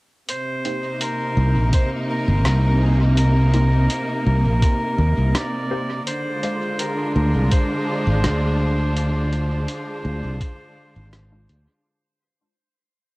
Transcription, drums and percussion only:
0.28 closed hi-hat soft
0.65 closed hi-hat soft
1.01 closed hi-hat medium
1.73 kick medium
1.73 closed hi-hat medium
2.45 cross-stick medium
2.45 closed hi-hat medium
3.17 closed hi-hat soft
3.54 closed hi-hat soft
3.90 closed hi-hat medium
4.62 kick loud
4.62 closed hi-hat medium
5.35 cross-stick medium
5.35 closed hi-hat soft
6.07 closed hi-hat medium
6.43 closed hi-hat soft
6.79 closed hi-hat medium
7.52 kick loud
7.52 closed hi-hat medium
8.24 cross-stick medium
8.24 closed hi-hat soft
8.96 closed hi-hat soft
9.33 closed hi-hat soft
9.68 closed hi-hat soft
10.41 kick loud
10.41 closed hi-hat soft
11.13 cross-stick medium
11.13 closed hi-hat soft
11.49 closed hi-hat soft

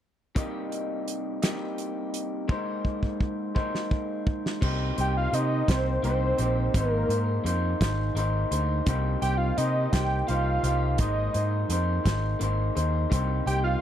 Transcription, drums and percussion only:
0.36 kick medium
0.36 closed hi-hat medium
0.72 closed hi-hat medium
1.08 closed hi-hat medium
1.43 snare medium
1.43 closed hi-hat medium
1.78 closed hi-hat medium
2.14 closed hi-hat medium
2.49 kick medium
2.85 kick medium
3.03 kick soft
3.20 kick medium
3.56 kick medium
3.75 snare soft
3.91 kick medium
4.27 kick medium
4.46 snare medium
4.62 kick medium
4.62 crash medium
4.98 closed hi-hat medium
5.34 closed hi-hat medium
5.68 kick medium
5.68 snare loud
5.68 closed hi-hat medium
6.04 closed hi-hat medium
6.38 closed hi-hat medium
6.74 kick loud
6.74 closed hi-hat medium
7.10 closed hi-hat medium
7.46 closed hi-hat medium
7.81 kick medium
7.81 snare loud
7.81 closed hi-hat medium
8.17 closed hi-hat medium
8.52 closed hi-hat medium
8.86 kick loud
8.86 closed hi-hat medium
9.22 closed hi-hat medium
9.58 closed hi-hat medium
9.93 kick medium
9.93 snare medium
9.93 closed hi-hat medium
10.28 closed hi-hat medium
10.64 closed hi-hat medium
10.98 kick medium
10.98 closed hi-hat medium
11.34 closed hi-hat medium
11.70 closed hi-hat medium
12.06 kick medium
12.06 snare loud
12.06 closed hi-hat medium
12.41 closed hi-hat medium
12.77 closed hi-hat medium
13.12 kick medium
13.12 closed hi-hat medium
13.47 closed hi-hat medium

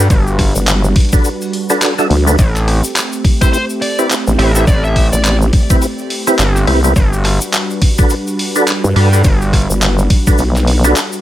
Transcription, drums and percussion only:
0.10 kick loud
0.10 open hi-hat soft
0.10 shaker medium
0.27 shaker soft
0.39 kick medium
0.39 cross-stick soft
0.39 open hi-hat medium
0.55 open hi-hat soft
0.55 shaker medium
0.67 clap loud
0.67 open hi-hat soft
0.67 shaker medium
0.84 open hi-hat soft
0.84 shaker soft
0.96 kick loud
0.96 open hi-hat medium
1.00 open hi-hat medium
1.05 open hi-hat soft
1.09 kick loud
1.09 open hi-hat soft
1.09 shaker medium
1.13 open hi-hat soft
1.16 open hi-hat soft
1.19 open hi-hat soft
1.22 open hi-hat soft
1.22 shaker medium
1.25 open hi-hat soft
1.42 open hi-hat soft
1.42 shaker soft
1.53 open hi-hat medium
1.70 cross-stick soft
1.70 open hi-hat soft
1.70 shaker medium
1.82 clap loud
1.82 open hi-hat soft
1.82 shaker medium
1.98 cross-stick soft
1.98 open hi-hat soft
1.98 shaker soft
2.11 open hi-hat medium
2.27 open hi-hat soft
2.27 shaker medium
2.39 kick loud
2.39 open hi-hat soft
2.39 shaker medium
2.56 clap soft
2.56 open hi-hat soft
2.56 shaker soft
2.68 cross-stick soft
2.68 open hi-hat medium
2.84 open hi-hat soft
2.84 shaker medium
2.88 open hi-hat soft
2.90 open hi-hat soft
2.93 clap loud
2.93 open hi-hat soft
2.96 open hi-hat soft
2.96 shaker medium
3.13 open hi-hat soft
3.13 shaker soft
3.25 kick loud
3.25 open hi-hat medium
3.42 kick loud
3.42 open hi-hat soft
3.42 shaker medium
3.54 open hi-hat soft
3.54 shaker medium
3.69 open hi-hat soft
3.69 shaker soft
3.82 open hi-hat medium
3.99 open hi-hat soft
3.99 shaker medium
4.11 clap loud
4.11 open hi-hat soft
4.11 shaker medium
4.27 open hi-hat soft
4.27 shaker soft
4.39 open hi-hat medium
4.55 open hi-hat soft
4.55 shaker medium
4.67 kick loud
4.67 open hi-hat soft
4.67 shaker medium
4.84 shaker soft
4.96 kick medium
4.96 cross-stick soft
4.96 open hi-hat medium
5.13 open hi-hat soft
5.13 shaker medium
5.25 clap loud
5.25 open hi-hat soft
5.25 shaker medium
5.42 open hi-hat soft
5.42 shaker soft
5.53 kick loud
5.53 open hi-hat medium
5.70 kick loud
5.70 open hi-hat soft
5.70 shaker medium
5.82 open hi-hat soft
5.82 shaker medium
5.98 shaker soft
6.10 open hi-hat medium
6.27 cross-stick soft
6.27 open hi-hat soft
6.27 shaker medium
6.39 clap loud
6.39 open hi-hat soft
6.39 shaker medium
6.56 cross-stick soft
6.56 open hi-hat soft
6.56 shaker soft
6.67 open hi-hat medium
6.84 open hi-hat soft
6.84 shaker medium
6.96 kick loud
6.96 open hi-hat soft
6.96 shaker medium
7.13 open hi-hat soft
7.13 shaker soft
7.25 cross-stick soft
7.25 clap soft
7.25 open hi-hat medium
7.41 open hi-hat soft
7.41 shaker medium
7.53 clap loud
7.53 open hi-hat soft
7.53 shaker medium
7.70 open hi-hat soft
7.70 shaker soft
7.82 kick loud
7.82 open hi-hat medium
7.98 kick loud
7.98 open hi-hat soft
7.98 shaker medium
8.10 open hi-hat soft
8.10 shaker medium
8.27 open hi-hat soft
8.27 shaker soft
8.39 open hi-hat medium
8.55 open hi-hat soft
8.55 shaker medium
8.67 clap loud
8.67 open hi-hat soft
8.67 shaker medium
8.85 open hi-hat soft
8.85 shaker soft
8.96 open hi-hat medium
9.13 open hi-hat soft
9.13 shaker medium
9.24 kick loud
9.24 open hi-hat soft
9.24 shaker medium
9.42 open hi-hat soft
9.42 shaker soft
9.53 kick medium
9.53 cross-stick soft
9.53 open hi-hat medium
9.62 open hi-hat soft
9.70 shaker medium
9.82 clap loud
9.82 open hi-hat soft
9.82 shaker medium
9.98 open hi-hat soft
9.98 shaker soft
10.10 kick loud
10.10 open hi-hat medium
10.27 kick loud
10.27 open hi-hat soft
10.27 shaker medium
10.38 open hi-hat soft
10.38 shaker medium
10.56 clap soft
10.56 open hi-hat soft
10.56 shaker soft
10.67 open hi-hat medium
10.84 cross-stick soft
10.84 open hi-hat soft
10.84 shaker medium
10.96 clap loud
10.96 open hi-hat soft
10.96 shaker medium
11.12 open hi-hat soft
11.12 shaker soft

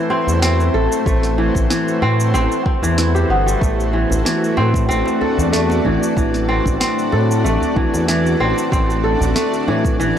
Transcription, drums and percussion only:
0.28 shaker medium
0.42 snare loud
0.42 shaker medium
0.60 shaker soft
0.92 shaker medium
1.06 kick loud
1.06 shaker medium
1.23 snare soft
1.23 shaker soft
1.55 kick loud
1.55 shaker medium
1.70 snare medium
1.70 shaker medium
1.88 shaker soft
2.20 shaker medium
2.35 shaker medium
2.52 shaker soft
2.66 kick loud
2.84 shaker medium
2.98 snare medium
2.98 shaker medium
3.16 shaker soft
3.48 shaker medium
3.62 kick loud
3.62 shaker medium
3.80 shaker soft
4.10 djembe tone medium
4.10 djembe bass medium
4.10 shaker medium
4.26 snare loud
4.26 shaker medium
4.44 shaker soft
4.57 djembe slap medium
4.74 kick loud
4.74 shaker medium
4.91 shaker medium
5.06 djembe slap medium
5.06 shaker soft
5.21 djembe slap soft
5.21 djembe tone medium
5.38 djembe bass medium
5.38 shaker medium
5.53 snare medium
5.53 shaker soft
5.70 djembe slap medium
5.70 shaker soft
5.85 djembe bass medium
6.02 djembe slap soft
6.02 shaker medium
6.17 kick loud
6.17 shaker medium
6.34 snare soft
6.34 shaker soft
6.66 kick loud
6.66 djembe bass medium
6.66 shaker medium
6.81 snare medium
6.81 shaker medium
6.99 shaker soft
7.12 djembe slap medium
7.31 shaker medium
7.46 shaker medium
7.62 djembe bass medium
7.62 shaker soft
7.76 kick loud
7.76 djembe slap soft
7.76 djembe bass medium
7.94 djembe slap medium
7.94 shaker medium
8.08 snare medium
8.08 shaker medium
8.26 shaker soft
8.58 shaker medium
8.72 kick loud
8.72 shaker medium
8.90 shaker soft
9.21 djembe tone medium
9.21 djembe bass medium
9.21 shaker medium
9.36 snare medium
9.36 shaker medium
9.53 shaker soft
9.68 djembe slap medium
9.85 kick loud
9.85 shaker medium
10.01 shaker medium

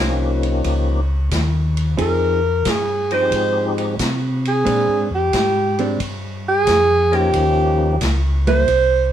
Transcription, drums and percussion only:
0.43 ride soft
0.64 kick soft
0.64 ride medium
1.31 kick soft
1.31 snare medium
1.31 hi-hat pedal medium
1.31 ride medium
1.77 ride soft
1.98 kick soft
1.98 ride medium
2.65 kick soft
2.65 snare medium
2.65 hi-hat pedal medium
2.65 ride medium
3.11 ride soft
3.32 kick soft
3.32 ride medium
3.78 ride soft
3.99 kick soft
3.99 snare medium
3.99 hi-hat pedal medium
3.99 ride medium
4.45 ride medium
4.66 kick soft
4.66 ride medium
5.33 kick soft
5.33 snare medium
5.33 hi-hat pedal medium
5.33 ride medium
5.79 ride soft
6.00 kick soft
6.00 ride medium
6.67 kick soft
6.67 snare medium
6.67 hi-hat pedal medium
6.67 ride medium
7.13 ride soft
7.33 kick soft
7.33 ride medium
8.01 kick soft
8.01 snare medium
8.01 hi-hat pedal medium
8.01 ride medium
8.47 ride soft
8.68 kick soft
8.68 ride medium

